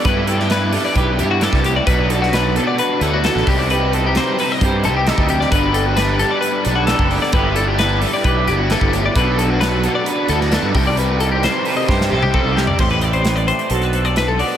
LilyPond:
<<
  \new Staff \with { instrumentName = "Clean electric guitar" } { \time 4/4 \key c \lydian \tempo 4 = 132 b'8 a'16 g'16 b'8 a'16 d''16 b'8 g'16 fis'16 a'8 g'16 d''16 | b'8 a'16 fis'16 b'8 a'16 d''16 b'8 a'16 fis'16 a'8 g'16 d''16 | b'8 a'16 g'16 c''8 b'16 ees''16 c''8 a'16 g'16 a'8 g'16 d''16 | b'8 a'16 fis'16 b'8 a'16 d''16 b'8 g'16 fis'16 a'8 g'16 d''16 |
b'8 a'16 g'16 b'8 a'16 d''16 b'8 g'16 fis'16 a'8 g'16 d''16 | b'8 a'16 fis'16 b'8 a'16 d''16 b'8 a'16 fis'16 a'8 g'16 d''16 | b'8 a'16 g'16 c''8 b'16 ees''16 c''8 a'16 g'16 a'8 g'16 d''16 | c''16 b'16 d''16 c''8 d''16 c''8 a'16 b'8 d''16 b'16 a'16 d''8 | }
  \new Staff \with { instrumentName = "Clean electric guitar" } { \time 4/4 \key c \lydian << { r8 e'8 d'4 g'8 e'4. | r8 fis'8 d'4 b'4. r8 | g'8 c'16 ees'8. c''8 g'8 c''8 ees'8 r8 | <g d' fis' b'>4 d'2 g'16 a'16 d'8 |
<g d' e' g'>8 e'8 d'4 g'8 d'16 e'4~ e'16 | <b d' fis' a'>8 fis'8 d'4 b'4. r8 | g'8 ees'4 c''8 g'8 c''8 c'16 ees'16 r8 | g'8 b'4 g'8 <b d' fis' a'>8 a'4 fis'8 | } \\ { <g, g>4. g4 g,8 g,8 a,8 | b,4. b4 a,8 b,8 c8~ | c4 g4 g4. c8 | g,4. g4 d4. |
g,4. g4 g,8 g,8 a,8 | b,4. b4 a,8 b,8 c8~ | c4 g4 g4. c8 | a,4. a8 b,4. b8 | } >> }
  \new Staff \with { instrumentName = "Overdriven electric guitar" } { \time 4/4 \key c \lydian <g b e' g'>4 <g b e' g'>8 <b e' g'>4 <b e' g'>8 <g b e' g'>4 | <b, fis b d' fis'>4 <b, fis b d' fis'>8 <b d' fis'>4 <b d' fis'>8 <fis b d' fis'>8 <c g c' ees' g'>8 | <c g c' ees' g'>4 <c g c' ees' g'>8 <c' ees' g'>4 <c' ees' g'>8 <g c' ees' g'>4 | <g b d' g'>4 <g b d' g'>8 <b d' g'>4 <b d' g'>8 <g b d' g'>4 |
<g b e' g'>4 <g b e' g'>8 <b e' g'>4 <b e' g'>8 <g b e' g'>4 | <b, fis b d' fis'>4 <b, fis b d' fis'>8 <b d' fis'>4 <b d' fis'>8 <fis b d' fis'>8 <c ees g c' g'>8 | <c ees g c' g'>4 <c ees g c' g'>8 <g c' g'>4 <g c' g'>8 <ees g c' g'>4 | r1 | }
  \new Staff \with { instrumentName = "Fingered electric bass" } { \clef bass \time 4/4 \key c \lydian g,2 b,,8 g,8. c,8. | b,,2 r8 d,8. a,,16 c,8~ | c,4. r8 g,8 c,8. d,8. | g,,2 r8 b,,8. fis,,8 r16 |
g,,2 b,,8 g,,8. g,,8. | b,,2 r8 d,8. g,16 c,8~ | c,4. r8 g,8 c,8. c,8. | a,,2 b,,2 | }
  \new DrumStaff \with { instrumentName = "Drums" } \drummode { \time 4/4 <hh bd>8 hh16 sn16 <hh sn>8 hho8 <hh bd>8 hh8 <hh sn>16 <bd sn>16 hh8 | <hh bd>8 hh16 sn16 <hh sn>8 hh8 hh8 hh8 <hh sn>16 sn16 <hho bd>8 | hh8 hh8 <hh sn>8 hho8 <hh bd>8 hh8 <hh sn>16 bd16 hh16 sn16 | <hh bd>8 hh8 <hh sn>8 hh8 hh8 hh8 <hh sn>16 bd16 hho16 sn16 |
<hh bd>8 hh8 <hh sn>8 hho8 <hh bd>8 hh8 <hh sn>16 bd16 hh8 | <hh bd>8 hh8 <hh sn>8 hh8 hh8 hh16 sn16 <hh sn>8 <hho bd>8 | hh8 hh8 <hh sn>8 hho8 <bd sn>16 sn8 toml16 bd8 sn16 tomfh16 | <cymc bd>16 hh16 hh16 hh16 <hh sn>16 hh16 hh16 hh16 hh16 hh16 hh16 hh16 <hh sn>8 hho8 | }
>>